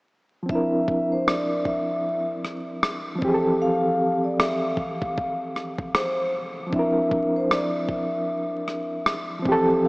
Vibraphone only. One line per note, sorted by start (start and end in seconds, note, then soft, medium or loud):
0.50 1.08 E5 medium
1.12 1.26 C5 medium
1.28 1.66 D5 medium
1.67 2.25 E5 medium
3.62 4.20 F5 medium
4.24 4.38 D5 medium
4.39 4.74 E5 medium
4.79 5.37 F5 medium
5.96 6.31 C5 medium
6.74 7.32 E5 loud
7.36 7.51 C5 medium
7.52 7.87 D5 medium
7.91 8.49 E5 medium